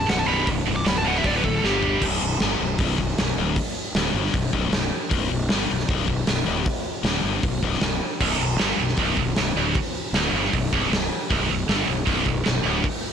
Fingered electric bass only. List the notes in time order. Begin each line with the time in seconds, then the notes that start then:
0.10 B0
0.28 B0
0.47 B0
0.66 B0
0.86 C#1
1.24 D1
1.44 D1
1.64 G1
2.02 B0
2.24 B0
2.42 G1
2.60 B0
2.79 B0
2.98 B0
3.19 B0
3.38 D1
3.95 D1
4.14 G1
4.34 B0
4.53 B0
4.72 B0
5.12 B0
5.32 B0
5.52 G1
5.71 B0
5.89 B0
6.09 B0
6.28 B0
6.47 D1
7.04 D1
7.24 G1
7.44 B0
7.63 B0
7.82 B0
8.21 B0
8.40 B0
8.60 G1
8.78 B0
8.98 B0
9.18 B0
9.37 B0
9.56 D1
10.13 D1
10.33 G1
10.54 B0
10.73 B0
10.92 B0
11.31 B0
11.51 B0
11.69 G1
11.88 B0
12.08 B0
12.27 B0
12.46 B0
12.65 D1